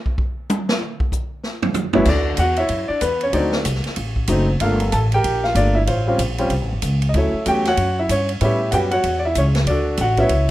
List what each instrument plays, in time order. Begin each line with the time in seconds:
0.06 kick
0.18 kick
0.49 hi-hat pedal, high tom
0.69 snare
0.81 mid tom
1.00 kick
1.12 kick, hi-hat pedal
1.44 snare
1.62 floor tom
1.74 floor tom, hi-hat pedal
1.93 upright bass G1, grand piano D2 F#3 B3 C#4 E4, floor tom
2.05 upright bass D2, grand piano D4 F#4 A4 D5, kick, crash
2.37 upright bass E2, grand piano F#5, hi-hat pedal, ride
2.41 grand piano F#4
2.56 grand piano E4 C#5 E5, ride
2.69 upright bass F#2, ride
2.88 grand piano D4 D5, muted upright bass stroke
3.01 upright bass E2, grand piano B3 B4, hi-hat pedal, ride
3.21 grand piano C#5, ride
3.25 grand piano C#4
3.32 upright bass D2, grand piano F#3 A3 C4 D4 D#4 F#4 A4 D5, ride
3.52 snare
3.65 upright bass C2, hi-hat pedal, ride
3.75 snare
3.84 muted upright bass stroke, snare, ride
3.96 upright bass A1, ride
4.16 kick
4.27 upright bass F#1, grand piano F#3 A3 C4 D#4, hi-hat pedal, ride
4.60 upright bass G1, grand piano A3 A#3 D4 F4 A4 A#4 F5, ride
4.80 ride
4.92 upright bass A1, grand piano A4 A5, hi-hat pedal, ride
5.12 grand piano G4 A#4 G5, ride
5.24 upright bass A#1, ride
5.44 grand piano F4 F5, snare
5.55 upright bass G1, grand piano A3 A#3 D4 F4 D5, hi-hat pedal, ride
5.75 grand piano E4 E5
5.87 upright bass A1, grand piano F4 C5 C#5 F5, ride
6.07 grand piano G3 C4 C#4 F4
6.18 upright bass A#1, hi-hat pedal, ride
6.38 grand piano G3 C4 C#4 F4, ride
6.50 upright bass C2, ride
6.61 upright bass A1
6.72 upright bass G1
6.82 upright bass C#2, hi-hat pedal, ride
7.02 ride
7.09 grand piano D#5
7.14 upright bass D2, grand piano F#3 A3 C#4 E4 A4 C#5 E5, ride
7.33 muted upright bass stroke
7.46 upright bass E2, grand piano F#3 A3 C#4 F#4 G5, hi-hat pedal, ride
7.50 grand piano G4
7.65 grand piano F#4 C#5 F#5, snare, ride
7.77 upright bass F#2, ride
7.99 grand piano E4 E5
8.09 upright bass G2, grand piano C#4 C#5, hi-hat pedal, ride
8.29 ride
8.41 upright bass A2, grand piano G3 B3 C#4 E4 E5, ride
8.45 grand piano G4 C#5
8.71 upright bass F#2, grand piano G3 B3 C#4 F#4 F#5 G5, hi-hat pedal, ride
8.76 grand piano G4
8.91 grand piano F#4 C#5 F#5, ride
9.04 upright bass E2, ride
9.19 grand piano D5
9.25 grand piano E4 E5
9.35 upright bass C#2, grand piano C#5, hi-hat pedal, ride
9.39 grand piano C#4
9.55 snare, ride
9.66 upright bass D2, grand piano D4 F#4 A4 D5, ride
9.97 upright bass A1, grand piano F#5, hi-hat pedal, ride
10.03 grand piano F#4
10.17 grand piano F#3 B3 C#4 E4 E5, kick, ride
10.22 grand piano E4 C#5
10.29 upright bass C#2, ride